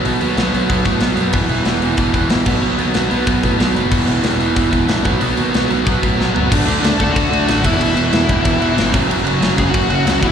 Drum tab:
CC |--------|x------x|--------|x-------|
HH |oooooooo|-oooooo-|-ooooooo|-ooooooo|
SD |--o---o-|--o---o-|--o---o-|--o---o-|
FT |--------|--------|--------|--------|
BD |----oo--|o---oo-o|----oo--|o---oo-o|

CC |--------|xxxxxxxx|xxxxxxxx|xxxxxxxx|
HH |oooooo--|--------|--------|--------|
SD |--o---o-|--o---o-|--o---o-|--o---o-|
FT |-------o|--------|--------|--------|
BD |----oo--|o--oo--o|---oo--o|---oo--o|